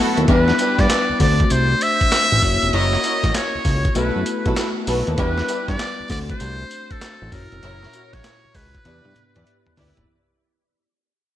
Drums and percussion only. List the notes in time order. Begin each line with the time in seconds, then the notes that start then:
0.17 closed hi-hat
0.28 kick, closed hi-hat
0.48 snare
0.59 closed hi-hat, tambourine
0.79 kick, snare, closed hi-hat
0.90 snare, clap, closed hi-hat, tambourine
1.20 kick, open hi-hat, tambourine
1.40 kick, closed hi-hat
1.50 closed hi-hat, tambourine
1.81 closed hi-hat, tambourine
2.01 kick, closed hi-hat
2.12 snare, clap, closed hi-hat, tambourine
2.42 kick, open hi-hat, tambourine
2.62 closed hi-hat
2.73 closed hi-hat
2.93 snare
3.04 closed hi-hat, tambourine
3.24 kick, snare, closed hi-hat
3.34 snare, clap, closed hi-hat, tambourine
3.65 kick, open hi-hat, tambourine
3.85 kick, closed hi-hat
3.95 closed hi-hat, tambourine
4.26 closed hi-hat, tambourine
4.46 kick, closed hi-hat
4.57 snare, clap, closed hi-hat, tambourine
4.87 open hi-hat, tambourine
5.07 closed hi-hat
5.18 kick, closed hi-hat
5.38 snare
5.48 closed hi-hat, tambourine
5.68 kick, snare, closed hi-hat
5.79 snare, clap, closed hi-hat, tambourine
6.09 kick, open hi-hat, tambourine
6.30 kick, closed hi-hat
6.40 closed hi-hat, tambourine
6.71 closed hi-hat, tambourine
6.91 kick, closed hi-hat
7.01 snare, clap, closed hi-hat, tambourine
7.32 kick, open hi-hat, tambourine
7.52 closed hi-hat
7.63 closed hi-hat
7.83 snare
7.93 closed hi-hat, tambourine
8.13 kick, snare, closed hi-hat
8.24 snare, clap, closed hi-hat, tambourine
8.54 kick, open hi-hat, tambourine
8.75 kick, closed hi-hat
8.85 closed hi-hat, high tom
9.05 high tom
9.16 closed hi-hat, mid tom
9.36 closed hi-hat, mid tom
9.47 closed hi-hat
9.67 mid tom
9.77 floor tom, open hi-hat
9.97 closed hi-hat, floor tom